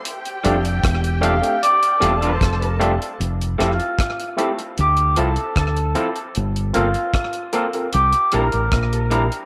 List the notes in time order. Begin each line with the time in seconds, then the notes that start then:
0.04 G4 G5, closed hi-hat
0.25 closed hi-hat
0.44 F1 G3 A3 C4 D4 F4 G4 A4, closed hi-hat
0.65 closed hi-hat
0.84 E1, kick, cross-stick, closed hi-hat
1.04 closed hi-hat
1.21 G3 A3 C4 D4 F4 G4 A4 F5, closed hi-hat
1.42 A3 C4 D4 G4, closed hi-hat
1.63 D5, closed hi-hat
1.83 closed hi-hat
2.00 E1 G3 A3 C4 D4 F4 G4 A4 A5, closed hi-hat
2.21 G3 D4 F4 G4 A4, closed hi-hat
2.25 C5
2.41 F1, kick, cross-stick, closed hi-hat
2.60 D4 G4, closed hi-hat
2.66 A#4
2.79 G3 A3 C4 D4 F4 G4 A4, closed hi-hat
3.02 closed hi-hat
3.20 F1, closed hi-hat
3.41 closed hi-hat
3.58 F1 A3 C4 E4 F4 G4 A4, cross-stick, closed hi-hat
3.80 closed hi-hat
3.99 kick, cross-stick, closed hi-hat
4.20 closed hi-hat
4.37 A3 C4 E4 G4 A4, closed hi-hat
4.58 muted clean electric guitar stroke, closed hi-hat
4.78 D2 G4, closed hi-hat
4.97 closed hi-hat
5.16 C2 F3 C4 E4 F4 A4, closed hi-hat
5.36 closed hi-hat
5.56 D2 A4, kick, cross-stick, closed hi-hat
5.77 closed hi-hat
5.95 F3 C4 E4 F4 A4, closed hi-hat
6.16 closed hi-hat
6.35 G1, closed hi-hat
6.56 closed hi-hat
6.73 G1 A#3 C4 F4 A4 A#4, closed hi-hat
6.94 closed hi-hat
7.14 kick, cross-stick, closed hi-hat
7.33 closed hi-hat
7.53 A#3 C4 F4 A4 A#4, closed hi-hat
7.73 C4 F4 A4 A#4, muted clean electric guitar stroke, closed hi-hat
7.93 C2 G4, closed hi-hat
8.13 closed hi-hat
8.32 A#1 G3 C4 D4 E4 G4 A#4, closed hi-hat
8.52 A1 G4 A#4, closed hi-hat
8.72 A#1, kick, cross-stick, closed hi-hat
8.93 G4 A#4, closed hi-hat
9.11 G3 C4 D4 E4 G4 A#4, closed hi-hat
9.32 closed hi-hat